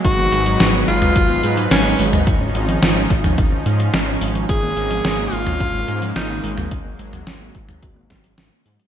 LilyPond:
<<
  \new Staff \with { instrumentName = "Alto saxophone" } { \time 4/4 \key gis \dorian \tempo 4 = 108 fis'4. eis'4. cis'8 r8 | r1 | gis'4. eis'4. dis'8 r8 | r1 | }
  \new Staff \with { instrumentName = "Synth arpeggio sound" } { \time 4/4 \key gis \dorian dis'16 b16 gis16 fis16 dis'16 b16 gis16 fis16 fis'16 b16 gis16 fis16 dis'16 b16 gis16 fis16 | dis'16 cis'16 gis16 eis16 eis'16 cis'16 gis16 eis16 dis'16 cis'16 gis16 eis16 dis'16 cis'16 gis16 eis16 | eis'16 ais16 gis16 eis16 cis'16 ais16 gis16 eis16 cis'16 ais16 gis16 eis16 eis'16 ais16 gis16 eis16 | cis'16 ais16 gis16 fis16 cis'16 ais16 gis16 fis16 fis'16 ais16 gis16 fis16 cis'16 ais16 gis16 fis16 | }
  \new Staff \with { instrumentName = "Analog synth pad" } { \clef bass \time 4/4 \key gis \dorian << { <fis b'>1 | cis'1 | ais1~ | ais1 | } \\ { <gis dis'>1 | eis1 | gis1 | fis1 | } >> }
  \new Staff \with { instrumentName = "Detuned saw bass" } { \clef bass \time 4/4 \key gis \dorian gis,,8 gis,,8 gis,,8 gis,,8 gis,,8 gis,8 gis,,8 gis,,8 | gis,,8 gis,,8 gis,,8 gis,,8 gis,,8 gis,8 gis,,8 gis,,8 | gis,,8 gis,,8 gis,,8 gis,,8 gis,,8 gis,8 gis,,8 gis,,8 | gis,,8 gis,,8 gis,,8 gis,,8 gis,,8 gis,,8 gis,,8 gis,8 | }
  \new DrumStaff \with { instrumentName = "Drums" } \drummode { \time 4/4 <hh bd>8 hh16 hh16 <hh sn>8 hh16 <hh toml>16 <hh bd>8 hh16 hh16 <hh sn>8 hho16 <hh toml>16 | <hh bd>8 hh16 hh16 <hh sn>8 <hh bd>16 <hh toml>16 <hh bd>8 hh16 hh16 <hh sn>8 hho16 hh16 | <hh bd>8 hh16 hh16 <hh sn>8 hh16 <hh toml>16 <hh bd>8 hh16 hh16 <hh sn>8 hho16 <hh toml>16 | <hh bd>8 hh16 <hh toml>16 <hh sn>8 <hh bd>16 <hh toml>16 <hh bd>8 <hh bd sn>16 hh16 <hh sn>8 hho16 hh16 | }
>>